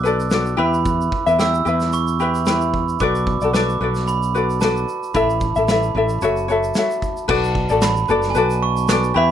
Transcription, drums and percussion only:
0.05 shaker
0.20 shaker
0.30 snare, shaker
0.46 shaker
0.74 shaker
0.85 kick, shaker
1.01 shaker
1.12 kick
1.27 shaker
1.39 snare, shaker
1.54 shaker
1.66 shaker
1.80 snare, shaker
1.93 shaker
2.07 shaker
2.20 shaker
2.35 shaker
2.46 snare, shaker
2.61 shaker
2.74 kick
2.89 shaker
3.00 kick, shaker
3.15 shaker
3.27 kick
3.41 shaker
3.54 snare, shaker
3.69 shaker
3.95 snare, shaker
4.08 shaker
4.23 shaker
4.35 shaker
4.50 shaker
4.61 snare, shaker
4.77 shaker
4.89 shaker
5.03 shaker
5.14 kick, shaker
5.30 shaker
5.41 kick, shaker
5.56 shaker
5.68 snare, shaker
5.83 shaker
6.09 shaker
6.21 shaker
6.36 shaker
6.49 shaker
6.63 shaker
6.74 snare, shaker
6.90 shaker
7.02 kick, shaker
7.17 shaker
7.29 kick, crash
7.44 shaker
7.55 kick
7.69 shaker
7.81 snare, clap, shaker
7.96 shaker
8.08 shaker
8.22 snare, shaker
8.35 shaker
8.50 shaker
8.77 shaker
8.88 snare, clap, shaker
9.04 shaker

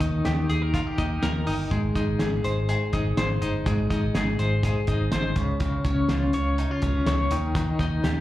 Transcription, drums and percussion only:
0.01 kick, closed hi-hat
0.25 snare, closed hi-hat
0.50 closed hi-hat
0.74 kick, closed hi-hat
0.98 kick, closed hi-hat
1.23 snare, closed hi-hat
1.47 open hi-hat
1.71 kick, closed hi-hat
1.95 kick, closed hi-hat
2.19 snare, closed hi-hat
2.44 closed hi-hat
2.69 closed hi-hat
2.93 kick, closed hi-hat
3.17 snare, closed hi-hat
3.42 closed hi-hat
3.66 kick, closed hi-hat
3.90 kick, closed hi-hat
4.15 snare, closed hi-hat
4.39 closed hi-hat
4.63 kick, closed hi-hat
4.87 kick, closed hi-hat
5.12 snare, closed hi-hat
5.36 kick, closed hi-hat
5.60 kick, closed hi-hat
5.85 kick, closed hi-hat
6.09 snare, closed hi-hat
6.33 closed hi-hat
6.58 closed hi-hat
6.82 kick, closed hi-hat
7.06 snare, closed hi-hat
7.31 closed hi-hat
7.55 kick, closed hi-hat
7.79 kick, closed hi-hat
8.04 snare, closed hi-hat

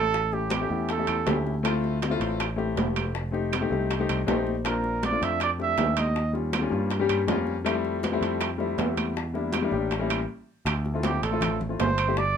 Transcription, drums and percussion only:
0.14 high bongo, high conga
0.32 high bongo, high conga
0.50 high bongo, high conga, high timbale, low timbale, claves
0.70 high conga
0.89 high bongo, high conga, high timbale
1.07 high bongo, high conga, high timbale, claves
1.27 high bongo, low bongo, high conga, high timbale, low timbale
1.46 high bongo, high conga
1.65 high bongo, high conga, high timbale, claves
1.84 high bongo, high conga
2.02 high bongo, high conga, high timbale, low timbale
2.21 high bongo, high conga, high timbale
2.40 high bongo, high conga, high timbale, claves
2.59 high bongo, high conga
2.77 high bongo, low bongo, high conga, high timbale, low timbale
2.96 high conga, high timbale, claves
3.15 high bongo, high conga
3.34 high bongo, high conga
3.53 high bongo, high conga, high timbale, low timbale, claves
3.72 high conga
3.91 high bongo, high conga, high timbale
4.09 high bongo, high conga, high timbale, claves
4.28 high bongo, low bongo, high conga, high timbale, low timbale
4.46 high bongo, high conga
4.65 high bongo, high conga, high timbale, claves
4.84 high bongo, high conga
5.03 high bongo, high conga, high timbale, low timbale
5.22 high bongo, high conga, high timbale
5.40 high bongo, high conga, high timbale, claves
5.60 high bongo, high conga
5.78 high bongo, low bongo, high conga, high timbale, low timbale
5.97 high conga, high timbale, claves
6.16 high bongo, high conga
6.35 high bongo, high conga
6.53 high bongo, high conga, high timbale, low timbale, claves
6.73 high conga
6.91 high bongo, high conga, high timbale
7.09 high bongo, high conga, high timbale, claves
7.28 high bongo, low bongo, high conga, high timbale, low timbale
7.47 high bongo, high conga
7.66 high bongo, high timbale, claves
7.85 high bongo, high conga
8.03 high bongo, high conga, high timbale, low timbale
8.22 high bongo, high conga, high timbale
8.41 high bongo, high conga, high timbale, claves
8.60 high bongo, high conga
8.78 high bongo, low bongo, high conga, high timbale, low timbale
8.97 high conga, high timbale, claves
9.16 high bongo, high conga
9.35 high bongo, high conga
9.53 high bongo, high conga, high timbale, low timbale, claves
9.72 high conga
9.91 high bongo, high conga, high timbale
10.09 high bongo, high conga, high timbale, claves
10.66 high bongo, high conga, high timbale, claves
10.85 high bongo, high conga
11.03 high bongo, high conga, high timbale, low timbale
11.23 high bongo, high conga, high timbale
11.41 high bongo, high conga, low conga, high timbale, claves
11.61 high bongo, high conga, low conga
11.80 high bongo, low bongo, high conga, high timbale, low timbale
11.98 high timbale, claves
12.17 high bongo, high conga

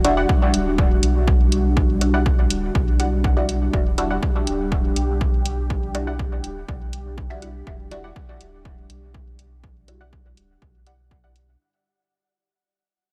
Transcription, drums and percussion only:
0.05 closed hi-hat
0.29 kick
0.54 closed hi-hat
0.78 kick
1.03 closed hi-hat
1.28 kick
1.52 closed hi-hat
1.77 kick
2.01 closed hi-hat
2.26 kick
2.50 closed hi-hat
2.75 kick
3.00 closed hi-hat
3.24 kick
3.49 closed hi-hat
3.73 kick
3.98 closed hi-hat
4.23 kick
4.47 closed hi-hat
4.72 kick
4.96 closed hi-hat
5.21 kick
5.46 closed hi-hat
5.70 kick
5.95 closed hi-hat
6.19 kick
6.44 closed hi-hat
6.68 kick
6.93 closed hi-hat
7.18 kick
7.42 closed hi-hat
7.67 kick
7.91 closed hi-hat
8.16 kick
8.41 closed hi-hat
8.65 kick
8.90 closed hi-hat
9.14 kick
9.39 closed hi-hat
9.64 kick
9.88 closed hi-hat
10.13 kick
10.37 closed hi-hat
10.62 kick
10.87 closed hi-hat
11.11 kick
11.36 closed hi-hat

